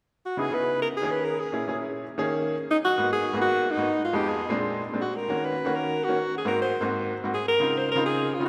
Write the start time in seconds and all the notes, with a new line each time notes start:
0.26 F#4
0.37 C#3 B3 D#4 E4 F#4 G#4
0.51 C#3 B3 D#4 E4 F#4 G#4 B4
0.82 A#4
0.97 G#4
1.01 D#3 A#3 C#4 G#4
1.11 B4
1.25 A#4
1.40 G#4
1.52 A#2 C#4 E4 G#4
1.67 A#2 C#4 E4 G#4
2.18 D#3 A#3 C#4 G#4
2.71 D#4
2.85 F#4
2.98 G#2 A#3 B3 F#4
3.13 G#4
3.33 G#2 A#3 B3 F#4
3.41 F#4
3.71 D#4
3.77 G#2 A#3 B3 F#4
4.05 F4
4.13 F2 G#3 B3 D#4 G4
4.29 G#4
4.49 A#2 G#3 C4 D4
4.93 A#2 G#3 C4 D4
5.01 F#4
5.16 A#4
5.28 D#3 A#3 C#4 F#4
5.45 B4
5.65 D#3 A#3 C#4 F#4
5.76 A#4
6.04 F#4
6.08 D#3 A#3 C#4 F#4
6.38 G#4
6.45 G#2 A#3 C4 F#4 A#4
6.62 C5
6.81 G#2 A#3 C4 F#4
7.24 G#2 A#3 C4 F#4
7.34 G#4
7.48 A#4
7.60 C#3 C4 D#4 F4
7.78 C5
7.92 C#3 A#4
7.96 C4 D#4 F4
8.06 G#4
8.35 F4
8.40 C#3 C4 D#4 F4
8.46 F#4